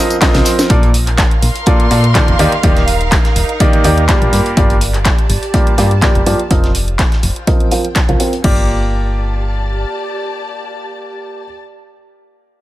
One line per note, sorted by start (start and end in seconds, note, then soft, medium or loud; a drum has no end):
0.00 0.16 F3 medium
0.00 0.15 C4 medium
0.00 0.15 F4 medium
0.00 0.16 A#4 medium
0.00 0.15 D#5 medium
0.10 closed hi-hat soft
0.10 tambourine soft
0.22 0.67 F3 medium
0.22 0.67 C4 medium
0.22 0.67 F4 medium
0.22 0.67 A#4 medium
0.22 0.67 D#5 loud
0.22 kick loud
0.22 snare medium
0.22 clap loud
0.22 closed hi-hat loud
0.22 closed hi-hat medium
0.22 tambourine soft
0.33 0.41 C2 medium
0.33 snare loud
0.33 snare medium
0.33 closed hi-hat medium
0.33 closed hi-hat soft
0.45 snare loud
0.45 closed hi-hat medium
0.45 open hi-hat medium
0.45 tambourine medium
0.59 snare medium
0.59 closed hi-hat soft
0.59 tambourine soft
0.70 1.23 A#1 loud
0.70 0.88 A#2 medium
0.70 0.88 A#3 medium
0.70 0.88 F4 medium
0.70 0.88 A4 medium
0.70 4.96 A#4 medium
0.70 0.88 D5 medium
0.70 kick loud
0.70 closed hi-hat medium
0.83 closed hi-hat soft
0.94 closed hi-hat medium
0.94 open hi-hat loud
1.05 5.21 F5 medium
1.05 clap soft
1.05 closed hi-hat soft
1.18 kick loud
1.18 snare loud
1.18 clap loud
1.18 closed hi-hat loud
1.18 closed hi-hat medium
1.31 closed hi-hat soft
1.42 1.50 A#1 medium
1.42 3.17 C6 medium
1.42 closed hi-hat medium
1.42 open hi-hat medium
1.56 closed hi-hat soft
1.66 1.85 A#2 medium
1.66 1.85 A#3 medium
1.66 1.85 F4 medium
1.66 1.85 A4 medium
1.66 1.85 D5 medium
1.66 kick loud
1.66 closed hi-hat medium
1.80 closed hi-hat soft
1.91 2.20 A#2 medium
1.91 2.03 A#2 medium
1.91 2.03 A#3 medium
1.91 2.03 F4 medium
1.91 2.03 A4 medium
1.91 2.03 D5 medium
1.91 snare medium
1.91 closed hi-hat medium
1.91 open hi-hat loud
2.04 closed hi-hat soft
2.15 2.33 D#3 medium
2.15 2.33 A#3 medium
2.15 2.33 F4 medium
2.15 2.33 A4 medium
2.15 2.33 D5 medium
2.15 kick loud
2.15 snare loud
2.15 clap loud
2.15 closed hi-hat loud
2.15 closed hi-hat medium
2.28 2.35 F1 medium
2.28 closed hi-hat soft
2.39 2.47 D#2 medium
2.39 2.51 D#3 medium
2.39 2.51 A#3 medium
2.39 4.33 D#4 medium
2.39 2.51 D#4 medium
2.39 2.51 G4 medium
2.39 2.51 D5 medium
2.39 closed hi-hat medium
2.39 open hi-hat medium
2.52 closed hi-hat soft
2.63 3.17 D#1 loud
2.63 2.82 D#3 medium
2.63 2.82 A#3 medium
2.63 2.82 D#4 medium
2.63 2.82 G4 medium
2.63 2.82 D5 medium
2.63 kick loud
2.63 closed hi-hat medium
2.76 snare soft
2.76 closed hi-hat soft
2.87 closed hi-hat medium
2.87 open hi-hat loud
3.01 closed hi-hat soft
3.11 kick loud
3.11 snare loud
3.11 clap loud
3.11 closed hi-hat medium
3.25 snare medium
3.25 closed hi-hat soft
3.36 3.44 D#1 medium
3.36 closed hi-hat medium
3.36 open hi-hat medium
3.49 closed hi-hat soft
3.60 3.82 D#3 medium
3.60 3.82 A#3 medium
3.60 3.82 D#4 medium
3.60 3.82 G4 medium
3.60 3.82 D5 loud
3.60 kick loud
3.60 closed hi-hat medium
3.73 closed hi-hat soft
3.84 4.13 D#2 medium
3.84 4.03 D#3 medium
3.84 4.03 A#3 medium
3.84 4.03 D#4 medium
3.84 4.03 G4 medium
3.84 4.03 D5 medium
3.84 closed hi-hat medium
3.84 open hi-hat loud
3.98 closed hi-hat soft
4.08 4.54 G2 medium
4.08 4.54 A#3 medium
4.08 4.54 F4 medium
4.08 4.54 G4 medium
4.08 4.54 D5 loud
4.08 kick loud
4.08 snare loud
4.08 clap loud
4.08 closed hi-hat medium
4.22 4.28 A#1 medium
4.22 closed hi-hat soft
4.33 4.41 G2 medium
4.33 7.28 G4 medium
4.33 closed hi-hat medium
4.33 open hi-hat medium
4.46 closed hi-hat soft
4.56 5.10 G1 loud
4.56 4.75 G2 medium
4.56 4.75 A#3 medium
4.56 4.75 F4 medium
4.56 4.75 G4 medium
4.56 7.28 D5 medium
4.56 4.75 D5 medium
4.56 kick loud
4.56 closed hi-hat medium
4.70 closed hi-hat soft
4.81 closed hi-hat medium
4.81 open hi-hat loud
4.94 clap soft
4.94 closed hi-hat soft
5.02 7.28 A5 medium
5.02 kick loud
5.02 snare loud
5.02 clap loud
5.02 closed hi-hat medium
5.18 closed hi-hat soft
5.29 5.37 G1 medium
5.29 closed hi-hat medium
5.29 open hi-hat medium
5.43 closed hi-hat soft
5.54 5.72 G2 medium
5.54 5.72 A#3 medium
5.54 5.72 F4 medium
5.54 5.72 G4 medium
5.54 5.72 D5 medium
5.54 kick loud
5.54 closed hi-hat medium
5.67 closed hi-hat soft
5.78 5.90 G2 medium
5.78 6.07 G2 medium
5.78 5.90 A#3 medium
5.78 5.90 F4 medium
5.78 5.90 G4 medium
5.78 5.90 D5 medium
5.78 snare medium
5.78 closed hi-hat medium
5.78 open hi-hat loud
5.91 closed hi-hat soft
6.02 6.20 G2 medium
6.02 6.20 A#3 medium
6.02 6.20 F4 medium
6.02 6.20 G4 medium
6.02 6.20 D5 medium
6.02 kick loud
6.02 snare loud
6.02 clap loud
6.02 closed hi-hat medium
6.15 6.22 F1 medium
6.15 closed hi-hat soft
6.26 6.34 G2 medium
6.26 6.38 F3 medium
6.26 6.38 A#3 medium
6.26 6.38 F4 medium
6.26 6.38 G4 medium
6.26 6.38 D5 medium
6.26 closed hi-hat medium
6.26 open hi-hat medium
6.39 closed hi-hat soft
6.51 7.04 F1 loud
6.51 6.69 F3 medium
6.51 6.69 C4 medium
6.51 8.44 F4 medium
6.51 6.69 F4 medium
6.51 6.69 A#4 medium
6.51 6.69 D#5 medium
6.51 kick loud
6.51 closed hi-hat medium
6.64 snare soft
6.64 closed hi-hat soft
6.68 8.44 C5 medium
6.75 closed hi-hat medium
6.75 open hi-hat loud
6.88 closed hi-hat soft
6.99 kick loud
6.99 snare loud
6.99 clap loud
6.99 closed hi-hat medium
7.12 8.44 G5 medium
7.12 snare medium
7.12 closed hi-hat soft
7.23 7.31 F1 medium
7.23 closed hi-hat medium
7.23 open hi-hat medium
7.36 closed hi-hat soft
7.47 7.69 F3 medium
7.47 7.69 C4 medium
7.47 7.69 F4 medium
7.47 7.69 A#4 medium
7.47 7.69 D#5 loud
7.47 kick loud
7.47 closed hi-hat medium
7.60 closed hi-hat soft
7.71 7.83 F3 medium
7.71 7.83 C4 medium
7.71 7.83 F4 medium
7.71 7.83 A#4 medium
7.71 7.83 F5 medium
7.71 closed hi-hat medium
7.71 open hi-hat loud
7.85 closed hi-hat soft
7.95 kick loud
7.95 snare loud
7.95 clap loud
7.95 closed hi-hat medium
8.09 8.15 C2 medium
8.09 8.18 F3 medium
8.09 8.18 C4 medium
8.09 8.18 F4 medium
8.09 8.18 A#4 medium
8.09 8.18 F5 medium
8.09 closed hi-hat soft
8.20 8.32 C4 medium
8.20 8.32 F4 medium
8.20 8.32 A#4 medium
8.20 8.32 G5 loud
8.20 closed hi-hat medium
8.20 open hi-hat medium
8.33 closed hi-hat soft
8.44 9.85 G1 medium
8.44 11.43 A#3 medium
8.44 11.43 F4 medium
8.44 11.43 G4 medium
8.44 11.43 D5 medium
8.44 kick loud
8.44 crash medium
8.52 11.51 D5 medium
8.59 11.59 A5 medium